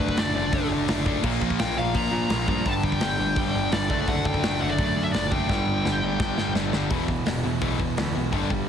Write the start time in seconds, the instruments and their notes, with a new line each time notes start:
Already playing: distorted electric guitar D3 A3 D4, lead electric guitar B4
0.00 picked electric bass F#1
0.09 kick
0.17 picked electric bass F#1, distorted electric guitar D3 A3 D4, lead electric guitar D5, snare, open hi-hat
0.35 picked electric bass F#1, distorted electric guitar D3 A3 D4
0.52 picked electric bass F#1, distorted electric guitar D3 A3 D4, kick, open hi-hat
0.71 picked electric bass F#1
0.88 picked electric bass F#1, distorted electric guitar D3 A3 D4, snare, open hi-hat
1.06 picked electric bass F#1, distorted electric guitar D3 A3 D4, kick
1.23 picked electric bass A#1, distorted electric guitar A#2 F3 A#3, kick, crash
1.41 picked electric bass A#1, kick
1.50 kick
1.59 picked electric bass A#1, distorted electric guitar A#2 F3 A#3, lead electric guitar G5, snare, open hi-hat
1.77 picked electric bass A#1, distorted electric guitar A#2 F3 A#3, lead electric guitar F5
1.94 picked electric bass A#2, distorted electric guitar A#2 F3 A#3, lead electric guitar A#5, kick, open hi-hat
2.12 picked electric bass A#2
2.30 picked electric bass A#1, distorted electric guitar A#2 F3 A#3, snare, open hi-hat
2.48 picked electric bass G2, distorted electric guitar A#2 F3 A#3, lead electric guitar A#5, kick
2.66 picked electric bass G1, distorted electric guitar G2 D3 G3, lead electric guitar A5, kick, open hi-hat
2.83 picked electric bass G1, lead electric guitar G5, kick
2.92 kick
3.01 picked electric bass G1, distorted electric guitar G2 D3 G3, snare, open hi-hat
3.19 picked electric bass G1, distorted electric guitar G2 D3 G3
3.36 picked electric bass G1, distorted electric guitar G2 D3 G3, kick, open hi-hat
3.54 picked electric bass G1
3.72 picked electric bass G1, distorted electric guitar G2 D3 G3, lead electric guitar D5, snare, open hi-hat
3.90 picked electric bass F#1, distorted electric guitar D3 A3 D4, kick
4.08 picked electric bass F#1, distorted electric guitar D3 A3 D4, lead electric guitar F#5, kick, open hi-hat
4.25 picked electric bass F#1, lead electric guitar G5, kick
4.34 kick
4.42 picked electric bass F#1, distorted electric guitar D3 A3 D4, snare, open hi-hat
4.60 picked electric bass F#1, distorted electric guitar D3 A3 D4, lead electric guitar F#5
4.69 lead electric guitar D5
4.78 picked electric bass F#2, distorted electric guitar D3 A3 D4, kick, open hi-hat
4.97 picked electric bass F#2
5.04 lead electric guitar E5
5.13 picked electric bass F#1, distorted electric guitar D3 A3 D4, lead electric guitar D5, snare, open hi-hat
5.31 picked electric bass F#1, distorted electric guitar D3 A3 D4, lead electric guitar G5, kick
5.49 picked electric bass G1, distorted electric guitar G2 D3 G3, kick, snare
5.66 picked electric bass G1
5.85 picked electric bass G1, distorted electric guitar G2 D3 G3, snare
6.02 picked electric bass G1, distorted electric guitar G2 D3 G3
6.20 picked electric bass G1, distorted electric guitar G2 D3 G3, kick, snare
6.37 picked electric bass G1, snare
6.55 picked electric bass G1, distorted electric guitar G2 D3 G3, snare
6.73 picked electric bass G1, distorted electric guitar G2 D3 G3, snare
6.90 picked electric bass E1, distorted electric guitar E2 B2 E3, kick, open hi-hat
7.08 distorted electric guitar E2 B2 E3, kick
7.26 picked electric bass E1, distorted electric guitar E2 B2 E3, snare, open hi-hat
7.44 picked electric bass E1, distorted electric guitar E2 B2 E3
7.62 picked electric bass B1, distorted electric guitar E2 B2 E3, kick, open hi-hat
7.79 picked electric bass E1, distorted electric guitar E2 B2 E3, kick
7.97 picked electric bass D2, distorted electric guitar E2 B2 E3, snare, open hi-hat
8.15 picked electric bass B1, distorted electric guitar E2 B2 E3
8.32 picked electric bass G1, distorted electric guitar G2 D3 G3, kick, open hi-hat
8.50 distorted electric guitar G2 D3 G3, kick